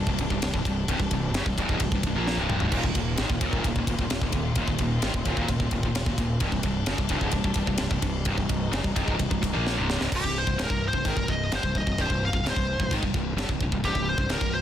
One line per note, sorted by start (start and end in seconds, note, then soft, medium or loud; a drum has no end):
0.00 2.68 C3 medium
0.00 2.68 G3 medium
0.00 2.68 D4 medium
0.07 0.18 C1 medium
0.07 0.19 C2 medium
0.07 0.20 G2 medium
0.07 kick medium
0.19 0.30 C1 medium
0.19 0.30 C2 medium
0.19 0.31 G2 medium
0.19 kick medium
0.19 ride medium
0.30 0.41 C1 medium
0.30 0.43 C2 medium
0.30 0.43 G2 medium
0.30 kick medium
0.42 0.53 C1 medium
0.42 0.53 C2 medium
0.42 0.53 G2 medium
0.42 snare loud
0.42 ride loud
0.54 0.64 C1 medium
0.54 0.66 C2 medium
0.54 0.66 G2 medium
0.54 kick medium
0.65 0.87 C1 medium
0.65 0.84 C2 medium
0.65 0.85 G2 medium
0.65 kick medium
0.65 ride medium
0.88 0.99 C1 loud
0.88 0.99 C2 loud
0.88 1.00 G2 loud
0.88 kick loud
0.88 ride loud
1.00 1.10 C1 medium
1.00 1.11 C2 medium
1.00 1.12 G2 medium
1.00 kick medium
1.11 1.33 C1 medium
1.11 1.31 C2 medium
1.11 1.31 G2 medium
1.11 kick medium
1.11 ride medium
1.33 1.44 F#1 loud
1.33 1.46 F#2 medium
1.33 1.46 C#3 loud
1.33 snare loud
1.33 ride medium
1.46 1.57 C1 medium
1.46 1.57 C2 medium
1.46 1.58 G2 medium
1.46 kick medium
1.58 1.68 C1 loud
1.58 1.69 C2 medium
1.58 1.69 G2 loud
1.58 kick medium
1.58 ride medium
1.69 1.80 C#1 medium
1.69 1.80 C#2 loud
1.69 1.80 G#2 loud
1.69 kick medium
1.80 1.91 C1 medium
1.80 1.93 C2 medium
1.80 1.93 G2 medium
1.80 kick medium
1.80 ride loud
1.91 2.02 C1 medium
1.91 2.05 C2 medium
1.91 2.05 G2 medium
1.91 kick medium
2.03 2.14 C1 medium
2.03 2.15 C2 medium
2.03 2.16 G2 medium
2.03 kick medium
2.03 ride medium
2.15 2.36 A#1 medium
2.15 2.38 A#2 medium
2.15 2.38 F3 loud
2.15 2.39 A#3 loud
2.28 snare medium
2.37 2.59 C1 medium
2.37 2.61 C2 medium
2.37 2.61 G2 loud
2.37 2.62 C3 loud
2.50 mid tom medium
2.60 2.72 C#1 medium
2.60 2.72 C#2 medium
2.60 2.73 G#2 loud
2.60 floor tom medium
2.72 2.83 D#1 loud
2.72 2.84 D#2 loud
2.72 2.84 A#2 loud
2.72 6.39 D#3 medium
2.72 4.55 A#3 medium
2.72 6.39 F4 medium
2.72 kick loud
2.72 crash medium
2.84 2.95 D#1 medium
2.84 2.96 D#2 medium
2.84 2.97 A#2 medium
2.84 kick medium
2.95 3.17 D#1 medium
2.95 3.15 D#2 medium
2.95 3.15 A#2 medium
2.95 kick medium
2.95 ride medium
3.18 3.29 G#1 loud
3.18 3.30 G#2 loud
3.18 3.30 D#3 loud
3.18 snare loud
3.18 ride loud
3.30 3.40 D#1 medium
3.30 3.40 D#2 medium
3.30 3.41 A#2 medium
3.30 kick medium
3.41 3.52 D#1 medium
3.41 3.53 D#2 medium
3.41 3.53 A#2 medium
3.41 kick medium
3.41 ride medium
3.52 3.64 D#1 medium
3.52 3.65 D#2 loud
3.52 3.65 A#2 loud
3.52 kick medium
3.64 3.75 D#1 medium
3.64 3.77 D#2 medium
3.64 3.77 A#2 medium
3.64 kick medium
3.64 ride loud
3.76 3.86 D#1 medium
3.76 3.88 D#2 medium
3.76 3.88 A#2 medium
3.76 kick medium
3.87 3.98 D#1 medium
3.87 4.00 D#2 medium
3.87 4.00 A#2 medium
3.87 kick medium
3.87 ride medium
3.99 4.10 D#1 medium
3.99 4.10 D#2 medium
3.99 4.11 A#2 medium
3.99 kick medium
4.10 4.21 D#1 medium
4.10 4.22 D#2 medium
4.10 4.22 A#2 medium
4.10 snare loud
4.10 ride loud
4.21 4.32 D#1 medium
4.21 4.33 D#2 medium
4.21 4.34 A#2 medium
4.21 kick medium
4.32 4.55 D#1 medium
4.32 4.53 D#2 medium
4.32 4.53 A#2 medium
4.32 kick medium
4.32 ride medium
4.55 4.67 D#1 loud
4.55 4.68 D#2 loud
4.55 4.68 A#2 loud
4.55 6.41 C4 medium
4.55 kick loud
4.55 ride loud
4.67 4.79 D#1 medium
4.67 4.79 D#2 medium
4.67 4.80 A#2 medium
4.67 kick medium
4.78 5.01 D#1 medium
4.78 4.99 D#2 medium
4.78 4.99 A#2 medium
4.78 kick medium
4.78 ride medium
5.02 5.14 G#1 loud
5.02 5.13 G#2 loud
5.02 5.14 D#3 loud
5.02 snare loud
5.02 ride medium
5.13 5.25 D#1 medium
5.13 5.24 D#2 medium
5.13 5.25 A#2 medium
5.13 kick loud
5.25 5.36 D#1 loud
5.25 5.36 D#2 medium
5.25 5.37 A#2 loud
5.25 kick medium
5.25 ride medium
5.37 5.48 D#1 loud
5.37 5.47 D#2 medium
5.37 5.48 A#2 medium
5.37 kick medium
5.48 5.60 D#1 medium
5.48 5.59 D#2 medium
5.48 5.59 A#2 medium
5.48 kick loud
5.48 ride medium
5.60 5.71 D#1 medium
5.60 5.71 D#2 medium
5.60 5.71 A#2 medium
5.60 kick medium
5.71 5.83 D#1 medium
5.71 5.84 D#2 medium
5.71 5.83 A#2 medium
5.71 kick medium
5.71 ride medium
5.83 5.94 D#1 medium
5.83 5.95 D#2 medium
5.83 5.95 A#2 medium
5.83 kick medium
5.95 6.05 D#1 medium
5.95 6.06 D#2 medium
5.95 6.05 A#2 medium
5.95 snare loud
5.95 ride loud
6.06 6.17 D#1 medium
6.06 6.17 D#2 medium
6.06 6.18 A#2 medium
6.06 kick medium
6.18 6.40 D#1 medium
6.18 6.37 D#2 medium
6.18 6.38 A#2 medium
6.18 kick medium
6.18 ride medium
6.39 6.52 C1 loud
6.39 6.51 C2 loud
6.39 6.51 G2 loud
6.39 10.07 C3 medium
6.39 10.08 G3 medium
6.39 8.24 D4 medium
6.39 kick loud
6.39 ride loud
6.52 6.63 C1 medium
6.52 6.64 C2 medium
6.52 6.64 G2 medium
6.52 kick medium
6.63 6.86 C1 medium
6.63 6.84 C2 medium
6.63 6.84 G2 medium
6.63 kick medium
6.63 ride medium
6.86 6.98 F#1 medium
6.86 6.98 F#2 medium
6.86 6.99 C#3 loud
6.86 snare loud
6.86 ride loud
6.98 7.09 C1 medium
6.98 7.09 C2 medium
6.98 7.10 G2 medium
6.98 kick loud
7.09 7.21 C1 loud
7.09 7.21 C2 loud
7.09 7.22 G2 loud
7.09 kick medium
7.09 ride medium
7.21 7.32 C#1 medium
7.21 7.33 C#2 medium
7.21 7.34 G#2 loud
7.21 kick medium
7.31 7.44 C1 medium
7.31 7.43 C2 medium
7.31 7.44 G2 medium
7.31 kick medium
7.31 ride medium
7.44 7.55 C1 medium
7.44 7.55 C2 medium
7.44 7.56 G2 medium
7.44 kick medium
7.54 7.67 C1 medium
7.54 7.65 C2 medium
7.54 7.66 G2 medium
7.54 kick medium
7.54 ride medium
7.67 7.79 C1 medium
7.67 7.78 C2 medium
7.67 7.79 G2 medium
7.67 kick medium
7.78 7.90 C1 medium
7.78 7.89 C2 medium
7.78 7.90 G2 medium
7.78 snare loud
7.78 ride loud
7.91 8.02 C1 medium
7.91 8.01 C2 medium
7.91 8.01 G2 medium
7.91 kick medium
8.02 8.25 C1 medium
8.02 8.21 C2 medium
8.02 8.22 G2 medium
8.02 kick medium
8.02 ride medium
8.25 8.38 C1 loud
8.25 8.36 C2 loud
8.25 8.36 G2 loud
8.25 10.10 D#4 medium
8.25 kick loud
8.25 ride loud
8.37 8.49 C1 medium
8.37 8.48 C2 medium
8.37 8.48 G2 medium
8.37 kick medium
8.49 8.71 C1 medium
8.49 8.68 C2 medium
8.49 8.68 G2 medium
8.49 kick medium
8.49 ride medium
8.72 8.84 F#1 loud
8.72 8.83 F#2 medium
8.72 8.83 C#3 loud
8.72 snare loud
8.72 ride loud
8.83 8.96 C1 medium
8.83 8.94 C2 medium
8.83 8.95 G2 medium
8.83 kick medium
8.95 9.07 C1 loud
8.95 9.05 C2 loud
8.95 9.06 G2 loud
8.95 kick medium
8.95 ride medium
9.06 9.19 C#1 medium
9.06 9.18 C#2 loud
9.06 9.18 G#2 loud
9.06 kick medium
9.18 9.31 C1 medium
9.18 9.29 C2 medium
9.18 9.29 G2 medium
9.18 kick medium
9.18 ride medium
9.30 9.42 C1 medium
9.30 9.40 C2 medium
9.30 9.40 G2 medium
9.30 kick loud
9.42 9.54 C1 medium
9.42 9.53 C2 medium
9.42 9.53 G2 medium
9.42 kick medium
9.42 ride medium
9.53 9.76 A#1 medium
9.53 9.76 A#2 medium
9.53 9.77 F3 loud
9.53 9.77 A#3 loud
9.67 snare medium
9.77 10.00 C1 loud
9.77 9.99 C2 loud
9.77 10.00 G2 loud
9.77 10.00 C3 loud
9.90 snare loud
9.99 10.11 C#1 medium
9.99 10.11 C#2 medium
9.99 10.12 G#2 medium
9.99 snare medium
10.12 10.23 C1 medium
10.12 10.23 C2 loud
10.12 10.23 G2 loud
10.12 kick loud
10.12 crash loud
10.12 crash medium
10.16 10.37 G4 loud
10.24 10.46 C1 medium
10.24 10.43 C2 medium
10.24 10.43 G2 medium
10.24 kick medium
10.38 10.59 C5 medium
10.47 10.58 C1 medium
10.47 10.58 C2 medium
10.47 10.59 G2 medium
10.47 kick medium
10.58 10.69 C#1 loud
10.58 10.69 C#2 medium
10.58 10.70 G#2 loud
10.58 snare loud
10.58 crash medium
10.63 10.84 A#4 medium
10.70 10.92 C1 medium
10.70 10.89 C2 medium
10.70 10.89 G2 medium
10.70 kick medium
10.88 11.08 C5 medium
10.93 11.04 C1 medium
10.93 11.04 C2 medium
10.93 11.05 G2 medium
10.93 kick medium
11.05 11.16 G#1 medium
11.05 11.16 G#2 medium
11.05 11.16 D#3 loud
11.05 11.30 A#4 medium
11.05 kick medium
11.05 crash medium
11.16 11.27 C1 medium
11.16 11.28 C2 medium
11.16 11.28 G2 medium
11.16 kick medium
11.28 11.50 C1 medium
11.28 11.47 C2 medium
11.28 11.47 G2 medium
11.28 11.51 D#5 medium
11.28 kick medium
11.52 11.63 G1 medium
11.52 11.62 G2 medium
11.52 11.63 D3 loud
11.52 11.76 C5 medium
11.52 snare loud
11.52 crash medium
11.63 11.74 C1 medium
11.63 11.74 C2 medium
11.63 11.75 G2 medium
11.63 kick medium
11.75 11.86 C1 medium
11.75 11.85 C2 medium
11.75 11.86 G2 medium
11.75 11.99 D#5 medium
11.75 kick medium
11.86 11.97 C1 medium
11.86 11.98 C2 medium
11.86 11.98 G2 medium
11.86 kick medium
11.98 12.09 C1 medium
11.98 12.09 C2 medium
11.98 12.10 G2 loud
11.98 12.22 C5 loud
11.98 kick loud
11.98 crash medium
12.10 12.31 C1 medium
12.10 12.29 C2 medium
12.10 12.29 G2 medium
12.10 kick medium
12.25 12.46 F5 medium
12.33 12.42 C1 medium
12.33 12.45 C2 medium
12.33 12.45 G2 medium
12.33 kick medium
12.43 12.54 C#1 loud
12.43 12.56 C#2 loud
12.43 12.56 G#2 loud
12.43 snare loud
12.43 crash medium
12.49 12.92 C5 medium
12.56 12.78 C1 medium
12.56 12.75 C2 medium
12.56 12.75 G2 medium
12.56 kick medium
12.80 12.90 C1 medium
12.80 12.92 C2 medium
12.80 12.92 G2 medium
12.80 kick medium
12.91 13.02 G#1 medium
12.91 13.02 G#2 medium
12.91 13.03 D#3 loud
12.91 kick medium
12.91 crash medium
13.03 13.13 C1 medium
13.03 13.14 C2 medium
13.03 13.15 G2 medium
13.03 kick medium
13.14 13.36 C1 medium
13.14 13.33 C2 medium
13.14 13.33 G2 medium
13.14 kick medium
13.36 13.47 G1 medium
13.36 13.48 G2 loud
13.36 13.49 D3 loud
13.36 snare loud
13.36 crash medium
13.49 13.60 C1 medium
13.49 13.61 C2 medium
13.49 13.61 G2 medium
13.49 kick medium
13.60 13.71 C1 medium
13.60 13.71 C2 medium
13.60 13.71 G2 medium
13.60 kick medium
13.72 13.83 C1 medium
13.72 13.83 C2 medium
13.72 13.83 G2 medium
13.72 kick medium
13.84 13.95 C1 loud
13.84 13.95 C2 loud
13.84 13.95 G2 loud
13.84 14.07 G4 loud
13.84 kick medium
13.84 crash medium
13.95 14.17 C1 medium
13.95 14.14 C2 medium
13.95 14.14 G2 medium
13.95 kick medium
14.09 14.30 C5 medium
14.18 14.29 C1 medium
14.18 14.28 C2 medium
14.18 14.29 G2 medium
14.18 kick medium
14.29 14.41 C#1 loud
14.29 14.40 C#2 medium
14.29 14.41 G#2 loud
14.29 14.53 A#4 medium
14.29 snare loud
14.29 crash medium
14.41 14.62 C1 medium
14.41 14.59 C2 medium
14.41 14.60 G2 medium
14.41 kick medium
14.54 14.62 C5 medium